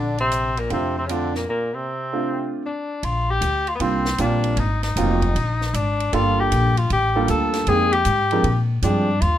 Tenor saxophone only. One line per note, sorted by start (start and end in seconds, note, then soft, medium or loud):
0.00 0.16 D4 medium
0.20 0.61 C4 medium
0.59 0.71 A#3 medium
0.74 0.96 C4 medium
0.98 1.07 C4 medium
1.06 1.12 C#4 medium
1.11 1.36 D4 medium
1.36 1.48 A#3 medium
1.50 1.76 A#3 medium
1.75 2.52 C4 medium
2.66 3.06 D4 medium
3.05 3.32 F4 medium
3.31 3.70 G4 medium
3.69 3.75 F4 medium
3.75 3.83 B3 medium
3.82 4.20 C4 medium
4.21 4.61 D4 medium
4.59 4.83 D#4 medium
4.84 5.77 D#4 medium
5.75 6.16 D4 medium
6.14 6.42 F4 loud
6.40 6.80 G4 medium
6.78 6.91 F4 medium
6.93 7.27 G4 medium
7.31 7.70 A4 loud
7.68 7.95 G#4 loud
7.93 8.60 G4 loud
8.84 9.23 D4 medium
9.21 9.38 F4 medium